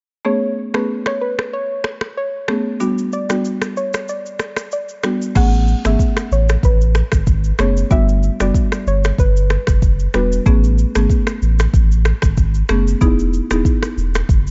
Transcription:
0.25 A3 B3 C#4 G#4 C#5
0.74 A3 B3 C#4 G#4 B4, finger snap, cross-stick
1.06 C#5, finger snap, cross-stick
1.21 B4
1.39 finger snap, cross-stick
1.53 C#5
1.84 finger snap, cross-stick
2.01 finger snap, cross-stick
2.17 C#5
2.48 A3 B3 C#4 G#4, finger snap, cross-stick
2.80 G3 B3 D4 F#4, shaker
2.98 shaker
3.13 D5, shaker
3.29 G3 B3 D4 F#4, finger snap, cross-stick, shaker
3.45 shaker
3.62 finger snap, cross-stick, shaker
3.77 C#5, shaker
3.94 finger snap, cross-stick, shaker
4.08 D5, shaker
4.26 shaker
4.39 finger snap, cross-stick, shaker
4.57 finger snap, cross-stick, shaker
4.72 D5, shaker
4.89 shaker
5.03 G3 B3 D4 F#4, finger snap, cross-stick, shaker
5.22 shaker
5.35 A1 A3 B3 C#4 G#4 F#5, kick, crash, shaker
5.53 shaker
5.68 shaker
5.85 G#1 A3 B3 C#4 G#4 E5, finger snap, cross-stick, shaker
5.99 kick, shaker
6.17 finger snap, cross-stick, shaker
6.31 A1 C#5, shaker
6.49 finger snap, cross-stick, shaker
6.63 A1 B4, kick, shaker
6.81 shaker
6.95 finger snap, cross-stick, shaker
7.12 G#1, finger snap, kick, cross-stick, shaker
7.27 G#1, kick, shaker
7.44 shaker
7.58 F#1 A3 B3 C#4 G#4 C#5, finger snap, cross-stick, shaker
7.77 shaker
7.91 G1 G3 B3 D4 F#4 E5, kick, shaker
8.09 shaker
8.23 shaker
8.40 F#1 G3 B3 D4 F#4 D5, finger snap, cross-stick, shaker
8.54 kick, shaker
8.72 finger snap, cross-stick, shaker
8.87 G1 C#5, shaker
9.04 finger snap, cross-stick, shaker
9.18 G1 B4, kick, shaker
9.37 shaker
9.50 finger snap, cross-stick, shaker
9.67 F#1, finger snap, kick, cross-stick, shaker
9.82 F#1, kick, shaker
9.99 shaker
10.14 E1 G3 B3 D4 F#4 B4, finger snap, cross-stick, shaker
10.32 shaker
10.46 A1 A3 B3 C#4 G#4, kick, shaker
10.64 shaker
10.78 shaker
10.95 G#1 A3 B3 C#4 G#4, finger snap, cross-stick, shaker
11.10 kick, shaker
11.27 finger snap, cross-stick, shaker
11.42 A1, shaker
11.59 finger snap, cross-stick, shaker
11.74 A1, kick, shaker
11.92 shaker
12.05 finger snap, cross-stick, shaker
12.22 G#1, finger snap, kick, cross-stick, shaker
12.37 G#1, kick, shaker
12.54 shaker
12.69 F#1 A3 B3 C#4 G#4, finger snap, cross-stick, shaker
12.87 shaker
13.01 E1 B3 D#4 E4 G#4, kick, shaker
13.19 shaker
13.34 shaker
13.51 D#1 B3 D#4 E4 G#4, finger snap, cross-stick, shaker
13.65 kick, shaker
13.83 finger snap, cross-stick, shaker
13.97 E1, shaker
14.15 finger snap, cross-stick, shaker
14.29 F#1, kick, shaker
14.47 shaker

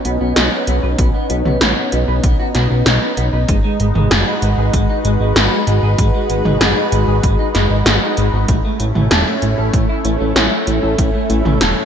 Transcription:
Already playing: B3 C#4 D#4
0.05 B1 B3, closed hi-hat
0.21 B1 B3
0.36 B1 D#4, snare, closed hi-hat
0.52 B3
0.67 B1 B3, closed hi-hat
0.83 B1 B4
0.98 B1 B3, kick, closed hi-hat
1.14 B3
1.30 B1 B3, closed hi-hat
1.45 B1 B3, mid tom
1.61 A1 B4, snare, closed hi-hat
1.77 B3
1.92 B1 B3, closed hi-hat
2.08 B1 B4
2.24 B1 B3, kick, closed hi-hat
2.39 F#4
2.55 B1 B3, snare, closed hi-hat
2.71 B1 B3
2.86 B1 D#4, snare, closed hi-hat
3.02 B3
3.17 B1 B3, closed hi-hat
3.33 B1 B4
3.48 G#1 G#3 F#4 B4, kick, closed hi-hat
3.64 G#3
3.80 G#1 G#3, closed hi-hat
3.95 G#1 G#3, mid tom
4.11 F#1 G#4, snare, closed hi-hat
4.27 G#3
4.42 G#1 G#3, closed hi-hat
4.58 G#1 G#4
4.73 G#1 G#3, kick, closed hi-hat
4.89 D#4
5.05 G#1 G#3, closed hi-hat
5.20 G#1 G#3
5.36 G#1 B3, snare, closed hi-hat
5.52 G#3
5.67 G#1 G#3, closed hi-hat
5.83 G#1 G#4
5.98 G#1 G#3, kick, closed hi-hat
6.14 G#3
6.30 G#1 G#3, closed hi-hat
6.45 G#1 G#3, mid tom
6.61 F#1 G#4, snare, closed hi-hat
6.77 G#3
6.92 G#1 G#3, closed hi-hat
7.08 G#1 G#4
7.23 G#1 G#3, kick, closed hi-hat
7.39 D#4
7.55 F#1 G#3, snare, closed hi-hat
7.70 G#1 D#4
7.86 G#1 G#3, snare, closed hi-hat
8.02 D#4
8.17 G#1 G#3, closed hi-hat
8.33 G#1 B3
8.48 A1 A3 C#4 E4, kick, closed hi-hat
8.64 A3
8.80 A1 A3, closed hi-hat
8.95 A1 A3, mid tom
9.11 E1 A4, snare, closed hi-hat
9.27 A3
9.42 A1 A3, closed hi-hat
9.58 A1 A4
9.73 A1 A3, kick, closed hi-hat
9.89 E4
10.05 A1 A3, closed hi-hat
10.20 A1 A3
10.36 A1 C#4, snare, closed hi-hat
10.52 A3
10.67 A1 A3, closed hi-hat
10.83 A1 A4
10.98 A1 A3, kick, closed hi-hat
11.14 A3
11.30 A1 A3, closed hi-hat
11.45 A1 A3, mid tom
11.61 E1 A4, snare, closed hi-hat
11.77 A3

